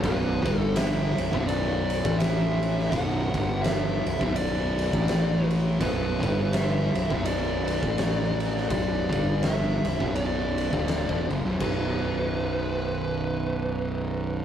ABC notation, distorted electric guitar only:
X:1
M:4/4
L:1/16
Q:"Swing" 1/4=83
K:Bm
V:1 name="Distorted electric guitar" clef=bass
[B,,,F,,B,,]2 [G,,D,G,]4 [B,,,F,,] [B,,,F,,B,,]4 [A,,E,A,]4- [A,,E,A,] | [B,,,F,,B,,]2 [G,,D,G,]4 [B,,,F,,] [B,,,F,,B,,]4 [A,,E,A,]4- [A,,E,A,] | [B,,,F,,B,,]2 [G,,D,G,]4 [B,,,F,,] [B,,,F,,B,,]4 [A,,E,A,]4- [A,,E,A,] | [B,,,F,,B,,]2 [G,,D,G,]4 [B,,,F,,] [B,,,F,,B,,]4 [D,,A,,D,]2 [E,,B,,] [F,,C,] [B,,,F,,] |
[B,,,F,,B,,]16 |]